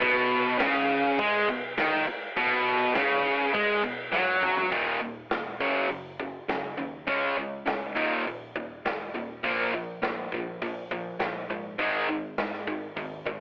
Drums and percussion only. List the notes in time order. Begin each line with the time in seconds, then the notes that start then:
0.02 kick, crash
0.31 crash
0.60 snare, crash
0.89 crash
1.19 kick, crash
1.48 crash
1.78 snare, crash
2.07 crash
2.37 kick, crash
2.67 crash
2.95 snare, crash
3.26 crash
3.55 kick, crash
3.84 crash
4.13 snare
4.43 mid tom
4.57 floor tom
4.72 kick, open hi-hat
5.31 snare, open hi-hat
5.60 kick
5.90 open hi-hat
6.20 kick
6.49 snare, open hi-hat
7.08 kick, open hi-hat
7.67 snare, open hi-hat
7.97 kick
8.27 open hi-hat
8.56 kick
8.86 snare, open hi-hat
9.44 kick, open hi-hat
10.03 snare, open hi-hat
10.32 kick
10.62 kick, open hi-hat
10.91 kick
11.20 snare, open hi-hat
11.79 kick, open hi-hat
12.38 snare, open hi-hat
12.53 snare
12.68 kick
12.97 kick, open hi-hat
13.27 kick